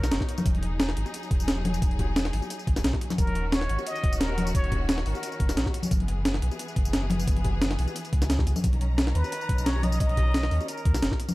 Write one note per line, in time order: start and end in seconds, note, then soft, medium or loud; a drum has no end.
0.00 0.11 B1 medium
0.00 0.43 B3 medium
0.00 3.14 D#4 medium
0.00 0.25 A#4 medium
0.00 0.43 C#5 medium
0.00 snare medium
0.00 tambourine medium
0.00 high bongo medium
0.11 0.20 F#1 medium
0.11 snare loud
0.11 closed hi-hat medium
0.11 tambourine soft
0.21 kick medium
0.21 snare soft
0.21 high bongo medium
0.29 closed hi-hat medium
0.29 tambourine soft
0.38 tambourine medium
0.38 high conga loud
0.46 0.95 E1 loud
0.46 3.16 F#3 medium
0.46 3.16 G#4 medium
0.46 kick loud
0.46 closed hi-hat medium
0.46 tambourine soft
0.55 closed hi-hat soft
0.55 high conga medium
0.63 closed hi-hat medium
0.80 snare loud
0.80 closed hi-hat medium
0.80 tambourine soft
0.89 snare medium
0.97 1.05 G#1 loud
0.97 closed hi-hat medium
1.06 tambourine soft
1.06 high bongo medium
1.14 closed hi-hat medium
1.14 tambourine soft
1.23 tambourine soft
1.31 1.81 E1 medium
1.31 kick loud
1.31 closed hi-hat medium
1.40 tambourine medium
1.48 snare loud
1.48 closed hi-hat medium
1.48 tambourine soft
1.58 high bongo medium
1.65 closed hi-hat medium
1.65 tambourine soft
1.65 high conga loud
1.74 tambourine medium
1.82 2.32 E1 loud
1.82 kick loud
1.82 closed hi-hat medium
1.82 tambourine soft
1.91 closed hi-hat soft
1.99 kick medium
1.99 closed hi-hat medium
1.99 high bongo medium
2.16 snare loud
2.16 closed hi-hat medium
2.16 tambourine soft
2.25 snare medium
2.25 closed hi-hat soft
2.33 2.41 G#1 loud
2.33 open hi-hat medium
2.42 tambourine soft
2.42 high bongo medium
2.50 closed hi-hat medium
2.50 tambourine soft
2.59 tambourine soft
2.67 2.75 G#1 loud
2.67 kick loud
2.67 closed hi-hat medium
2.76 2.83 E1 medium
2.76 snare medium
2.76 tambourine medium
2.76 high bongo medium
2.84 2.92 B1 medium
2.84 snare loud
2.84 closed hi-hat medium
2.84 tambourine soft
2.93 kick medium
2.93 snare soft
2.93 high bongo medium
3.01 closed hi-hat medium
3.01 tambourine soft
3.10 snare soft
3.10 tambourine medium
3.10 high conga medium
3.18 3.68 D#1 loud
3.18 5.88 D#3 medium
3.18 5.88 C#4 medium
3.18 5.88 F#4 medium
3.18 3.54 A#4 loud
3.18 kick loud
3.18 closed hi-hat medium
3.18 tambourine medium
3.27 closed hi-hat soft
3.27 high conga medium
3.35 closed hi-hat medium
3.52 3.86 C#5 loud
3.52 snare loud
3.52 closed hi-hat medium
3.52 tambourine soft
3.61 snare medium
3.69 3.78 G#1 medium
3.69 closed hi-hat medium
3.79 tambourine soft
3.79 high bongo medium
3.86 4.22 D#5 loud
3.86 closed hi-hat medium
3.86 tambourine medium
3.96 tambourine soft
4.04 4.53 D#1 medium
4.04 kick loud
4.04 closed hi-hat medium
4.13 tambourine medium
4.20 4.54 A#4 loud
4.20 snare loud
4.20 closed hi-hat medium
4.20 tambourine soft
4.29 high bongo medium
4.38 closed hi-hat medium
4.38 tambourine soft
4.38 high conga medium
4.47 tambourine medium
4.55 5.05 D#1 loud
4.55 4.86 C#5 loud
4.55 kick loud
4.55 closed hi-hat medium
4.55 tambourine medium
4.64 closed hi-hat soft
4.72 kick medium
4.72 closed hi-hat medium
4.72 high bongo medium
4.89 snare loud
4.89 closed hi-hat medium
4.89 tambourine soft
4.98 snare medium
5.06 5.14 G#1 loud
5.06 5.70 A#4 medium
5.06 open hi-hat medium
5.15 tambourine soft
5.15 high bongo medium
5.23 closed hi-hat medium
5.23 tambourine medium
5.32 tambourine soft
5.40 5.48 F#1 loud
5.40 kick loud
5.40 closed hi-hat medium
5.49 5.56 D#1 medium
5.49 snare medium
5.49 tambourine medium
5.49 high bongo soft
5.57 5.65 A#1 medium
5.57 snare loud
5.57 closed hi-hat medium
5.57 tambourine medium
5.66 kick medium
5.66 snare soft
5.66 high bongo medium
5.74 closed hi-hat medium
5.74 tambourine soft
5.83 tambourine medium
5.83 high conga medium
5.91 6.41 F#1 loud
5.91 8.61 E3 medium
5.91 8.61 B3 medium
5.91 8.61 G#4 medium
5.91 kick loud
5.91 closed hi-hat medium
5.91 tambourine medium
6.00 closed hi-hat soft
6.00 high conga medium
6.08 closed hi-hat medium
6.25 snare loud
6.25 closed hi-hat medium
6.25 tambourine medium
6.34 snare medium
6.42 6.50 B1 loud
6.42 closed hi-hat medium
6.51 tambourine soft
6.51 high bongo medium
6.59 closed hi-hat loud
6.59 tambourine medium
6.68 tambourine soft
6.76 7.26 F#1 medium
6.76 kick loud
6.76 closed hi-hat medium
6.85 tambourine medium
6.93 snare loud
6.93 closed hi-hat medium
6.93 tambourine soft
7.03 high bongo soft
7.10 closed hi-hat medium
7.10 tambourine soft
7.10 high conga loud
7.19 tambourine medium
7.27 7.77 F#1 loud
7.27 kick loud
7.27 closed hi-hat loud
7.27 tambourine medium
7.37 closed hi-hat soft
7.37 high conga medium
7.45 kick medium
7.45 closed hi-hat medium
7.45 high bongo medium
7.62 snare loud
7.62 closed hi-hat loud
7.62 tambourine medium
7.71 snare medium
7.71 closed hi-hat soft
7.79 7.87 B1 medium
7.79 open hi-hat medium
7.79 tambourine soft
7.88 tambourine soft
7.88 high bongo medium
7.96 closed hi-hat loud
7.96 tambourine medium
8.05 closed hi-hat soft
8.05 tambourine soft
8.13 8.46 C#2 medium
8.13 kick loud
8.13 closed hi-hat medium
8.22 snare medium
8.22 tambourine medium
8.22 high bongo soft
8.30 snare loud
8.30 closed hi-hat loud
8.30 tambourine medium
8.39 kick medium
8.39 snare soft
8.39 high bongo medium
8.47 8.55 C#2 medium
8.47 closed hi-hat medium
8.47 tambourine soft
8.56 tambourine medium
8.56 high conga medium
8.64 9.14 B1 loud
8.64 11.34 D#3 medium
8.64 11.34 C#4 medium
8.64 11.34 A#5 medium
8.64 kick loud
8.64 closed hi-hat loud
8.64 tambourine soft
8.73 closed hi-hat soft
8.73 high conga medium
8.81 closed hi-hat medium
8.98 snare loud
8.98 closed hi-hat medium
8.98 tambourine soft
9.07 snare medium
9.15 9.23 D#2 loud
9.15 9.68 B4 loud
9.15 closed hi-hat medium
9.24 tambourine soft
9.24 high bongo soft
9.32 closed hi-hat loud
9.32 tambourine medium
9.41 tambourine soft
9.49 9.99 B1 medium
9.49 kick loud
9.49 closed hi-hat medium
9.58 tambourine medium
9.66 9.85 C#5 loud
9.66 snare loud
9.66 closed hi-hat medium
9.66 tambourine soft
9.76 high bongo medium
9.83 10.00 D#5 loud
9.83 closed hi-hat medium
9.83 tambourine soft
9.83 high conga medium
9.92 tambourine medium
10.00 10.50 B1 loud
10.00 10.70 D#5 loud
10.00 kick loud
10.00 closed hi-hat loud
10.00 tambourine soft
10.09 closed hi-hat soft
10.17 kick medium
10.17 closed hi-hat medium
10.17 high bongo medium
10.34 snare loud
10.34 closed hi-hat medium
10.34 tambourine soft
10.43 snare medium
10.51 10.59 D#2 loud
10.51 open hi-hat medium
10.60 tambourine soft
10.60 high bongo medium
10.68 11.20 A#4 medium
10.68 closed hi-hat medium
10.68 tambourine soft
10.77 tambourine soft
10.85 10.94 D#2 loud
10.85 kick loud
10.85 closed hi-hat medium
10.94 11.02 B1 medium
10.94 snare medium
10.94 tambourine medium
10.94 high bongo medium
11.02 11.11 F#1 medium
11.02 snare loud
11.02 closed hi-hat medium
11.02 tambourine soft
11.11 kick medium
11.11 snare soft
11.11 high bongo soft
11.20 closed hi-hat medium
11.20 tambourine soft
11.29 tambourine medium
11.29 high conga medium